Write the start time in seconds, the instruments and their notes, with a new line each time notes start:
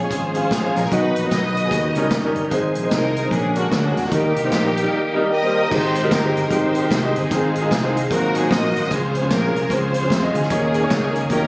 Already playing: tonewheel organ F3 G#3 C#4 G#4, string section F4 G#4
0.02 upright piano C#4 F4 G#4 C#5
0.10 fingered electric bass G#1, string section F4 G#4 C5, kick, closed hi-hat
0.35 upright piano C#4 F4 G#4 F5, closed hi-hat
0.51 fingered electric bass A1, kick, snare, closed hi-hat
0.63 upright piano C#4 F4 G#4 F5
0.75 fingered electric bass A#1, string section A#4, snare, closed hi-hat
0.85 snare
0.91 fingered electric bass B1, upright piano B2 B3 D#4 F#4 D#5, tonewheel organ D#3 F#3 B3 F#4, string section D#4 F#4 B4, kick, closed hi-hat
1.16 fingered electric bass A#1, closed hi-hat
1.24 upright piano B3 D#4 F#4 D#5
1.31 fingered electric bass B1, string section F#4 B4 D#5, kick, snare, closed hi-hat
1.57 closed hi-hat
1.64 upright piano B3 D#4 F#4 G#4
1.71 fingered electric bass D#2, upright piano D#3, tonewheel organ D#3 G3 C#4 D#4, kick, closed hi-hat
1.95 fingered electric bass C#2, upright piano G3 C#4 D#4 A#4, closed hi-hat
2.11 fingered electric bass F#1, kick, snare, closed hi-hat
2.23 upright piano G3 C#4 D#4 A#4
2.35 fingered electric bass G1, closed hi-hat
2.50 fingered electric bass G#1, upright piano G#2 G#3 C4 D#4 C5, tonewheel organ D#3 G#3 C4 G#4, kick, closed hi-hat
2.75 fingered electric bass A#1, closed hi-hat
2.83 upright piano G#3 C4 D#4 C5
2.91 fingered electric bass C2, string section D#4 A#4, kick, snare, closed hi-hat
3.16 closed hi-hat
3.24 upright piano G#3 C4 D#4 C5
3.31 fingered electric bass A#1, upright piano A#2, tonewheel organ C#3 G#3 A#3 F#4, string section C#4 D4 G#4, kick, closed hi-hat
3.36 tonewheel organ D3
3.55 upright piano G#3 D4 F#4 A#4, string section F#4, closed hi-hat
3.71 fingered electric bass D2, string section C#4 D4 F#4, kick, snare, closed hi-hat
3.83 upright piano G#3 D4 F#4 G#4
3.97 fingered electric bass E2, snare, closed hi-hat
4.05 snare
4.10 fingered electric bass D#2, tonewheel organ D#3 G3 A#3 G4, upright piano D#3 G3 A#3 D#4 A#4, string section A#3 D#4 G4, kick, closed hi-hat
4.36 fingered electric bass C2, closed hi-hat
4.43 upright piano G3 A#3 D#4 C5
4.52 fingered electric bass A#1, kick, snare, closed hi-hat
4.77 closed hi-hat
4.81 upright piano G3 A#3 D#4 A#4
5.14 upright piano G3 A#3 D#4 A#4 D#5
5.31 string section G4 A#4 D#5, upright piano G5
5.41 upright piano G3 A#3 D#4 C5
5.56 upright piano A#5
5.70 fingered electric bass G#1, upright piano G#2 G#3 D#4 G4 C5, tonewheel organ D#3 G#3 C4 G4, string section D#4 G4 C5, kick, crash
5.95 closed hi-hat
6.03 upright piano G#3 D#4 G4 A#4
6.11 fingered electric bass G1, string section D#4 G4 A#4, kick, snare, closed hi-hat
6.23 upright piano G#3 D#4 G4 C5
6.37 closed hi-hat
6.50 fingered electric bass G#1, upright piano G#3 D#4 G4 A#4, string section D#4 G4 C5, kick, closed hi-hat
6.75 closed hi-hat
6.81 upright piano G#3 D#4 G4 A#4
6.91 fingered electric bass C2, kick, snare, closed hi-hat
7.03 upright piano G#3 D#4 G4 D#5
7.14 fingered electric bass G1, string section C4 D#4 G#4, closed hi-hat
7.31 fingered electric bass G#1, upright piano G#2 G#3 D#4 F4 C5, tonewheel organ D#3 G#3 C4 F4, kick, closed hi-hat
7.55 closed hi-hat
7.61 upright piano G#3 D#4 F4 G#4
7.71 fingered electric bass C2, string section C4 D#4 G#4, kick, snare, closed hi-hat
7.82 upright piano G#3 D#4 F4 C5
7.97 closed hi-hat
8.10 fingered electric bass G#1, upright piano G#2 A#3 F4 F#4 C5, tonewheel organ F#3 A#3 C4 F#4, string section D#4 F#4 A#4, kick, closed hi-hat
8.35 string section G#4, closed hi-hat
8.40 upright piano A#3 F4 F#4 C5
8.51 fingered electric bass A#1, string section F#4 C5 D#5, kick, snare, closed hi-hat
8.61 upright piano A#3 F4 F#4 A#4
8.75 fingered electric bass G#1, closed hi-hat
8.84 snare
8.90 fingered electric bass C#2, upright piano C#3 G#3 C#4 F4 C5, tonewheel organ F3 C4 C#4 G#4, string section F4 G#4 C5, kick, closed hi-hat
9.15 closed hi-hat
9.21 upright piano G#3 C#4 F4 C5
9.30 fingered electric bass A#1, string section F4 A#4, kick, snare, closed hi-hat
9.42 upright piano G#3 C#4 F4 A#4
9.55 fingered electric bass C2, closed hi-hat
9.70 fingered electric bass C#2, upright piano G#3 C#4 F4 C5, string section F4 G#4 C5, kick, closed hi-hat
9.94 closed hi-hat
10.01 upright piano G#3 C#4 F4 C5
10.10 fingered electric bass F2, kick, snare, closed hi-hat
10.22 upright piano G#3 C#4 F4 D#5
10.34 fingered electric bass D2, string section C#4 G#4, closed hi-hat
10.43 snare
10.50 fingered electric bass D#2, upright piano D#3 A#3 D#4 G#4 C#5, tonewheel organ D#3 A#3 C#4 G#4, kick, closed hi-hat
10.74 closed hi-hat
10.81 upright piano A#3 D#4 G#4 C#5
10.90 fingered electric bass C#2, string section C#4 G#4, kick, snare, closed hi-hat
11.02 upright piano A#3 D#4 G#4 C#5
11.15 closed hi-hat
11.29 fingered electric bass D#2, upright piano D#3 A#3 D#4 G4 C#5, tonewheel organ D#3 A#3 C#4 G4, string section C#4 G4 A#4, kick, closed hi-hat